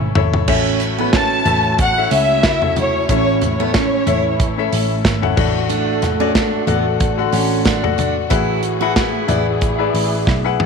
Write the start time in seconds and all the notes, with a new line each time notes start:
Already playing: G#1 C#3 E3 A3 C#4 E4 A4 C#5
0.15 G#1 E4 A4 C#5, floor tom
0.34 floor tom
0.48 A1 A2 F#3 A3 C#4 E4 F#4 A4 E5, kick, crash
0.80 hi-hat pedal, open hi-hat
0.98 B3 C#4 E4 A4 B4
1.13 C#4 A5, kick, snare, hi-hat pedal, open hi-hat
1.46 A1 B3 C#4 E4 A4 E5, floor tom, hi-hat pedal, open hi-hat
1.78 F#5, kick, hi-hat pedal, open hi-hat
1.97 C#4 E4 A4 E5
2.11 C#2 C#4 E5, hi-hat pedal, open hi-hat
2.43 E4, kick, snare, hi-hat pedal, open hi-hat
2.62 C#4 E4 A4 E5, floor tom
2.76 E4 C#5, floor tom, hi-hat pedal, open hi-hat
3.09 A1 A2 C#4 E4 A4 C#5 E5, kick, hi-hat pedal, open hi-hat
3.41 C#5, floor tom, hi-hat pedal, open hi-hat
3.59 B3 C#4 E4 A4 C#5
3.74 C#4, kick, snare, hi-hat pedal, open hi-hat
4.06 A1 E3 C#4 E4 A4 E5, floor tom, hi-hat pedal, open hi-hat
4.40 kick, hi-hat pedal, open hi-hat
4.58 C#4 E4 A4 E5
4.72 A1, hi-hat pedal, open hi-hat
5.05 G#1, kick, snare, hi-hat pedal, open hi-hat
5.22 C#4 E4 A4 F#5, floor tom
5.36 A1 A2 D3 A3 D4 F#4 A4 F#5, kick, floor tom, crash
5.69 D4, hi-hat pedal, open hi-hat
6.02 snare, floor tom, hi-hat pedal, open hi-hat
6.20 C#4 D4 F#4 A4 D5
6.35 D4, kick, snare, hi-hat pedal, open hi-hat
6.67 A1 B3 D4 F#4 A4 F#5, floor tom, hi-hat pedal, open hi-hat
7.00 kick, hi-hat pedal, open hi-hat
7.17 D3 F#4 A4 F#5
7.32 A1 C#4, hi-hat pedal, open hi-hat
7.65 D4, kick, snare, hi-hat pedal, open hi-hat
7.82 D4 F#4 A4 F#5, floor tom
7.98 D4, floor tom, hi-hat pedal, open hi-hat
8.30 A1 A2 F#3 E4 F#4 G#4 B4 F#5, kick, hi-hat pedal, open hi-hat
8.63 hi-hat pedal, open hi-hat
8.81 E4 F#4 G#4 B4 F#5
8.96 E4, kick, snare, hi-hat pedal, open hi-hat
9.27 A1 E4 G#4 B4 D5, floor tom, hi-hat pedal, open hi-hat
9.61 E3 E4, kick, hi-hat pedal, open hi-hat
9.78 E4 G#4 B4 D5
9.94 A1, hi-hat pedal, open hi-hat
10.27 B1, kick, snare
10.44 E4 G#4 B4 F#5
10.60 G#1, mid tom